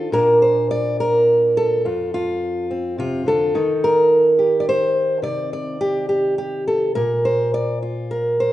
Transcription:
Already playing: D#3 F4 A4
0.12 A#2 A#3 D4 F4 A#4
0.42 C5
0.71 D5
1.00 A#4
1.57 A4
1.85 F2 F4
2.14 F4
2.71 C4
2.98 C3 F4
3.26 D3 A4
3.55 D#3 D#4
3.84 A#4
4.39 G4
4.60 D5
4.69 C5
5.22 C3 D5
5.53 D5
5.81 G4
6.09 G4
6.38 G4
6.68 A4
6.95 A#2 A#4
7.25 C5
7.54 D5
7.82 F4
8.11 A#4
8.40 C5

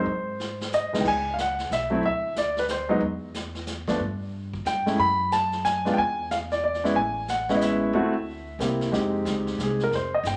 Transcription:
Already playing: C5
0.06 G#2, brush sweep
0.40 snare
0.61 snare
0.72 D#5, snare, hi-hat pedal
0.92 C#2 E3 G#3 B3 D#4, muted upright bass stroke, snare
1.01 G5
1.05 C#2 G#5, brush sweep, kick, crash
1.34 F5
1.38 F#5, snare, hi-hat pedal
1.59 snare
1.70 B1 E5, snare, hi-hat pedal
1.90 F#3 A3 C4 E4
2.03 D2 E5, brush sweep
2.36 D5, snare, hi-hat pedal
2.57 B4, snare
2.68 C5, snare, hi-hat pedal
2.89 F#3 G#3 B3 D#4
3.01 E2, brush sweep
3.34 snare, hi-hat pedal
3.55 snare
3.67 snare, hi-hat pedal
3.88 F3 A3 B3 D4, kick, snare
3.99 G2, brush sweep
4.53 kick
4.65 G2 G5, snare, hi-hat pedal
4.86 G#3 A3 C#4 E4, snare
4.98 F#2 B5, brush sweep
5.32 A5, snare, hi-hat pedal
5.52 snare
5.65 G#5, snare, hi-hat pedal
5.85 G#3 B3 D4 F4, snare
5.94 E2 G5
5.98 G#5, brush sweep
6.31 F5, snare, hi-hat pedal
6.51 D5, snare
6.64 D5
6.74 snare
6.84 G#3 B3 C#4 E4, snare
6.95 A1 G#5, brush sweep
7.28 F#5, snare, hi-hat pedal
7.49 G#3 B3 C#4 E4, snare
7.56 D#5
7.61 E5, snare, hi-hat pedal
7.93 D2 A3 C4 E4 F#4, brush sweep
8.59 C2 A#3 C4 E4 G4, snare, hi-hat pedal
8.81 snare
8.92 F2 G#3 C4 D#4 G4, brush sweep, snare
9.25 C#2, snare, hi-hat pedal
9.47 snare
9.58 C2, snare, hi-hat pedal
9.63 G#4
9.80 A#4, snare
9.91 F1, brush sweep, snare
9.95 C5
10.14 D#5
10.23 G1 G5, snare, hi-hat pedal

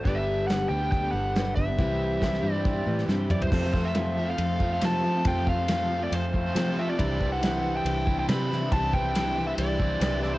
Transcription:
0.05 G1 G2 D3 G3 B3 D4 G4 B4 D5, kick, closed hi-hat
0.15 E5
0.47 G2 D3 G3 B3 D4 G4 F#5, snare, closed hi-hat
0.69 D2 G2 D3 G3 B3 D4 G4 G5
0.81 G3 B3 D4 G4
0.92 G5, kick, closed hi-hat
1.03 G3 B3 D4 G4
1.12 G1 G3 B3 D4 F#5
1.16 G4
1.35 G2 D3 G3 B3 D4 G4, snare, closed hi-hat
1.56 G1 G3 B3 D4 G4 E5, kick
1.67 G3 B3 D4 G4
1.78 C2 C3 E3 G3 C4 E4 G4 C5, kick, closed hi-hat
2.21 C3 E3 G3 E4 G4, kick, snare, closed hi-hat
2.34 snare
2.43 G2 C3 E3 G3 E4 G4
2.54 G3 E4 G4 D5
2.65 kick, closed hi-hat
2.74 G3 E4 G4
2.86 A2 E3 G3 E4 G4
2.99 snare
3.08 G2 C3 E3 G3 E4 G4, snare
3.29 F#2 E3 G3 E4 G4 D5, mid tom
3.41 G3 E4 G4 C5, floor tom
3.51 F2 C3 F3 A3 C4 F4 A4 C5, kick, crash
3.73 F3 A3 C4 F4, kick, snare
3.85 E5
3.94 F2 C3 F3 A3 C4 F4, snare, ride bell
4.16 F3 A3 C4 F4
4.27 F3 A3 C4 F4 F5
4.37 F2 F3 A3 C4 F4, ride bell
4.59 F3 A3 C4 F4, kick
4.73 F5
4.81 F2 C3 F3 A3 C4 F4 A5, snare, ride bell
5.04 F3 A3 C4 F4
5.14 F3 A3 C4 F4
5.25 F2 C3 F3 A3 C4 F4 G5, kick, ride bell
5.46 F3 A3 C4 F4 F5, kick
5.68 F2 C3 F3 A3 C4 F4, snare, ride bell
5.89 F3 A3 C4 F4
6.00 F3 A3 C4 F4 D5
6.10 F2 F3 A3 C4 F4, ride bell
6.15 C5
6.32 F3 A3 C4 F4, kick
6.54 F2 C3 F3 A3 C4 F4, snare, ride bell
6.76 F3 A3 C4 F4 E5
6.87 F3 A3 C4 F4 D5
6.97 C2 C3 E3 G3 C4 D4 E4 G4 C5, kick, ride bell
7.19 E3 G3 C4 D4 E4, kick
7.32 F#5
7.41 C3 E3 G3 C4 D4 E4, snare, ride bell
7.62 E3 G3 D4 E4
7.74 G3 D4 E4 G5
7.84 C2 E3 G3 D4 E4, ride bell
8.05 E3 G3 C4 D4 E4, kick
8.10 E4
8.19 G5
8.28 C3 E3 G3 C4 D4 E4 B5, snare, ride bell
8.49 E3 G3 C4 E4, snare
8.53 D4 E4
8.61 G3 D4 E4
8.72 C2 C3 E3 G3 C4 D4 E4 A5, kick, ride bell
8.92 E3 G3 C4 D4 E4 G5, kick
8.97 E4
9.15 C3 E3 G3 C4 D4 E4, snare, ride bell
9.36 E3 G3 D4 E4
9.46 G3 D4 E4 E5
9.58 C2 E3 G3 D4 E4 D5, ride bell
9.78 E3 G3 C4 D4 E4, kick
10.00 C2 C3 E3 G3 C4 D4 E4, snare, ride bell
10.21 E3 G3 C4 D4 E4 D5, snare
10.33 D4 E4 C5

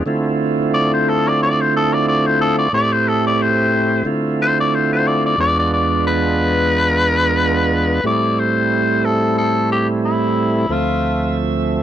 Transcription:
0.06 D3 A3 C4 E4 F4
0.74 D5
0.94 C5
1.09 A4
1.28 D5
1.43 D5
1.61 C5
1.76 A4
1.94 D5
2.08 D5
2.27 C5
2.41 A4
2.59 D5
2.72 A2 A3 C4 E4 G4 D5
2.93 C5
3.08 A4
3.27 D5
3.42 C5
4.05 D3 A3 C4 E4 F4
4.42 C5
4.60 D5
4.75 C5
4.93 C5
5.07 D5
5.26 D5
5.38 E2 G#3 B3 D4 F4 D5
5.59 D5
5.73 D5
6.07 B4
8.04 A2 G3 A3 C4 E4 D5
8.40 C5
9.05 A4
9.38 A4
9.72 G4
10.05 E4
10.69 D2 F3 A3 C4 F4 E5

